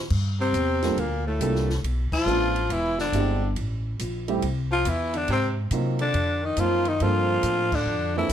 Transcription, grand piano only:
0.83 0.96 G3 medium
0.83 0.97 A#3 medium
0.83 0.96 D4 medium
0.83 0.97 F4 medium
0.83 0.97 A4 medium
1.41 1.66 G3 medium
1.41 1.67 A#3 medium
1.41 1.67 D4 medium
1.41 1.67 F4 medium
1.41 1.68 A4 medium
2.27 2.53 A3 medium
2.27 2.53 B3 medium
2.27 2.53 D4 medium
2.27 2.53 F4 medium
2.27 2.54 A4 medium
3.13 3.39 G#3 medium
3.13 3.39 C4 medium
3.13 3.40 D4 medium
3.13 3.40 E4 medium
3.13 3.40 G4 medium
4.28 4.41 G3 medium
4.28 4.41 A3 medium
4.28 4.41 C4 medium
4.28 4.42 E4 medium
4.28 4.42 G4 medium
5.72 5.98 F#3 medium
5.72 5.98 A#3 medium
5.72 5.98 C4 medium
5.72 5.98 D#4 medium
5.72 5.98 F4 medium
6.58 6.84 F#3 medium
6.58 6.84 A#3 soft
6.58 6.84 C4 medium
6.58 6.84 D#4 soft
6.58 6.85 F4 medium
7.02 7.67 F3 medium
7.02 7.67 A#3 medium
7.02 7.68 C4 medium
7.02 7.68 D4 medium
7.02 7.68 A4 medium
8.16 8.29 F3 medium
8.16 8.29 A#3 medium
8.16 8.29 C4 medium
8.16 8.30 D4 medium
8.16 8.30 A4 medium

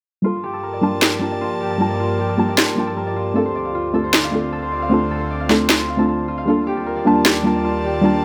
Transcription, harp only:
0.24 0.82 F4 medium
0.44 1.02 G4 loud
0.53 0.69 A4 medium
0.63 1.18 A#4 medium
0.73 1.31 D5 medium
0.83 1.41 F4 medium
1.02 1.60 G4 loud
1.12 1.27 A4 medium
1.21 1.76 A#4 medium
1.31 1.89 D5 medium
1.41 1.99 F4 medium
1.61 2.19 G4 medium
1.70 1.86 A4 medium
1.80 2.35 A#4 medium
1.90 2.48 D5 medium
2.00 2.58 F4 medium
2.19 2.77 G4 loud
2.29 2.44 A4 medium
2.38 2.93 A#4 medium
2.48 3.06 D5 medium
2.58 3.16 F4 medium
2.77 5.13 G4 medium
2.87 3.03 A4 medium
2.97 3.42 A#4 medium
3.07 3.55 D5 medium
3.16 3.74 F4 medium
3.36 3.94 A4 loud
3.46 4.03 C5 medium
3.55 4.13 D5 medium
3.65 4.23 F5 medium
3.75 4.33 F4 medium
3.94 4.52 A4 loud
4.04 4.62 C5 medium
4.14 4.72 D5 medium
4.23 4.81 F5 medium
4.33 4.91 F4 medium
4.52 5.11 A4 loud
4.62 5.20 C5 medium
4.72 5.30 D5 medium
4.82 5.40 F5 medium
4.91 5.50 F4 medium
5.11 5.69 A4 loud
5.21 5.79 C5 medium
5.30 6.96 D5 medium
5.40 5.89 F5 medium
5.50 6.28 F4 medium
5.69 6.76 A4 loud
5.79 7.77 C5 medium
5.89 6.37 F5 medium
5.99 6.08 A5 medium
6.09 6.92 A5 medium
6.28 6.47 F4 medium
6.38 8.04 F5 medium
6.47 7.05 F4 medium
6.67 7.25 G4 loud
6.77 6.92 A4 medium
6.86 7.41 A#4 medium
6.96 7.54 D5 medium
7.06 7.64 F4 medium
7.25 7.84 G4 loud
7.35 7.51 A4 medium
7.45 8.00 A#4 medium
7.55 8.13 D5 medium
7.64 8.22 F4 medium
7.84 8.25 G4 loud
7.94 8.09 A4 medium
8.03 8.25 A#4 medium
8.13 8.25 D5 medium

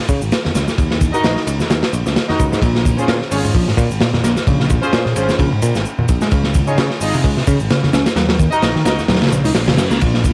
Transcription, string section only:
1.14 1.23 D#4 medium
1.14 1.23 F#4 medium
1.14 1.23 A#4 medium
1.14 1.23 D#5 loud
2.29 2.35 D#4 medium
2.29 2.35 F#4 medium
2.29 2.35 A#4 medium
2.29 2.35 D#5 medium
2.98 3.04 C#4 medium
2.98 3.04 F4 medium
2.98 3.04 G#4 medium
2.98 3.04 C5 medium
3.31 3.39 C#4 medium
3.31 3.39 F4 medium
3.31 3.39 G#4 medium
3.31 3.39 C#5 medium
4.83 4.92 C#4 medium
4.83 4.92 F4 medium
4.83 4.92 G#4 medium
4.83 4.92 C5 loud
5.16 5.24 C#4 medium
5.16 5.24 F4 medium
5.16 5.24 G#4 medium
5.16 5.24 C5 medium
6.68 6.74 D#4 medium
6.68 6.74 F4 medium
6.68 6.74 G#4 medium
6.68 6.74 C#5 medium
7.01 7.08 D#4 medium
7.01 7.08 F4 medium
7.01 7.08 G#4 medium
7.01 7.08 D#5 medium
8.52 8.62 D#4 loud
8.52 8.62 F#4 medium
8.52 8.62 A#4 medium
8.52 8.62 D#5 loud
8.86 8.93 D#4 medium
8.86 8.93 F#4 medium
8.86 8.93 A#4 medium
8.86 8.93 D#5 medium

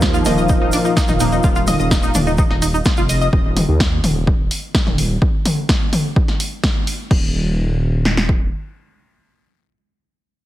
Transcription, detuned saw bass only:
0.00 0.21 D#2 medium
0.26 0.56 D#1 medium
0.62 0.70 D#1 medium
1.09 1.39 D#1 medium
1.44 1.74 D#1 medium
1.80 2.10 D#1 medium
2.15 2.45 D#1 medium
2.50 2.81 D#1 medium
2.98 3.28 F1 medium
3.33 3.63 D#1 loud
3.69 3.99 D#2 medium
4.04 4.34 D#1 medium
4.39 4.48 D#1 medium
4.87 5.17 D#1 loud
7.11 8.49 D#1 loud

